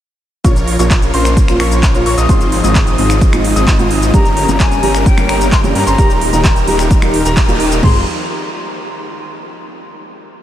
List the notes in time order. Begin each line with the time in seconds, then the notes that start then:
0.44 A#1 A#2 F3 A#3 C#4 F4 A#4 C#5 C#6, kick, closed hi-hat, shaker
0.56 closed hi-hat, shaker
0.68 open hi-hat
0.79 A#1 A#2 F3 A#3 C#4 F4 A#4 C#5 C#6, closed hi-hat, shaker
0.91 kick, clap, closed hi-hat, shaker
1.02 closed hi-hat, shaker
1.13 A#1 A#2 F3 A#3 C#4 F4 A#4 C5 C6, open hi-hat
1.25 finger snap, shaker
1.37 kick, closed hi-hat, shaker
1.48 A#2 F3 A#3 C#4 F4, finger snap, closed hi-hat, shaker
1.60 A#1 F4 A#4 C#5 C#6, finger snap, open hi-hat
1.71 closed hi-hat, shaker
1.83 kick, clap, closed hi-hat, shaker
1.94 A#2 F3 A#3 C#4 F4, closed hi-hat, shaker
2.06 A#1 F4 A#4 C#5 C#6, open hi-hat
2.18 A#1 F4 A#4 D#5 D#6, closed hi-hat, shaker
2.29 G#1 G#2 G#3 C4 D#4 F4 G#4 C5 C6, kick, closed hi-hat, shaker
2.41 closed hi-hat, shaker
2.52 open hi-hat
2.63 G#1 G#2 G#3 C4 D#4 F4 G#4 D#5 D#6, closed hi-hat, shaker
2.75 kick, clap, closed hi-hat, shaker
2.87 closed hi-hat, shaker
2.98 G#1 G#2 G#3 C4 D#4 F4 G#4 D#5 D#6, open hi-hat
3.10 finger snap, shaker
3.21 kick, closed hi-hat, shaker
3.32 G#2 G#3 C4 D#4 F4, finger snap, closed hi-hat, shaker
3.44 open hi-hat
3.56 G#1 C4 D#4 F4 G#4 D#5 D#6, closed hi-hat, shaker
3.68 kick, clap, closed hi-hat, shaker
3.79 G#2 G#3 C4 D#4 F4, closed hi-hat, shaker
3.91 open hi-hat
4.02 closed hi-hat, shaker
4.13 G1 G2 G3 A#3 C#4 G4 A#5, kick, closed hi-hat, shaker
4.25 closed hi-hat, shaker
4.37 open hi-hat
4.48 G1 G2 G3 A#3 C#4 G4 A#4 A#5, closed hi-hat, shaker
4.60 G#5, kick, clap, closed hi-hat, shaker
4.71 closed hi-hat, shaker
4.82 G1 G2 G3 A#3 C#4 G4 A#4 A#5, open hi-hat
4.95 finger snap, shaker
5.06 G5, kick, closed hi-hat, shaker
5.17 G2 G3 A#3 C#4 G4, finger snap, closed hi-hat, shaker
5.29 G1 C#4 G4 A#4 A#5, finger snap, open hi-hat
5.41 closed hi-hat, shaker
5.52 C6, kick, clap, closed hi-hat, shaker
5.63 G2 G3 A#3 C#4 G4, closed hi-hat, shaker
5.75 G2 C#4 G4 A#4 A#5, open hi-hat
5.87 G1 C#4 G4 C5 C6, closed hi-hat, shaker
5.98 D#1 D#3 G3 A#3 D#4 G4 A#4 A#5, kick, closed hi-hat, shaker
6.10 closed hi-hat, shaker
6.21 open hi-hat
6.32 D#1 G3 A#3 D#4 G4 A#4 A#5, closed hi-hat, shaker
6.44 kick, clap, closed hi-hat, shaker
6.56 closed hi-hat, shaker
6.67 D#1 G3 A#3 D#4 G4 A#4 A#5, open hi-hat
6.79 finger snap, shaker
6.91 kick, closed hi-hat, shaker
7.02 G3 A#3 D#4 G4, finger snap, closed hi-hat, shaker
7.14 open hi-hat
7.25 D#1 D#4 G4 A#4 A#5, closed hi-hat, shaker
7.37 kick, clap, closed hi-hat, shaker
7.48 G3 A#3 D#4 G4, closed hi-hat, shaker
7.60 open hi-hat
7.71 closed hi-hat, shaker
7.81 F1 F3 G#3 C4 F4 G#4 C5 C6, kick, floor tom, crash